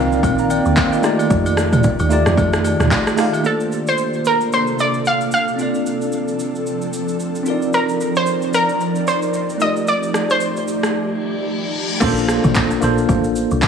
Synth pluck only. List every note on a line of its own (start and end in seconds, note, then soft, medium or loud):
3.46 3.85 A4 medium
3.89 4.23 C5 medium
4.27 4.53 A#4 medium
4.54 4.78 C5 loud
4.80 5.04 D5 loud
5.07 5.33 F5 loud
5.34 6.90 F5 loud
7.74 8.13 A#4 medium
8.17 8.55 C5 medium
8.54 9.04 A#4 medium
9.08 9.63 C5 loud
9.62 9.89 D#5 loud
9.88 10.32 D5 loud
10.31 11.71 C5 medium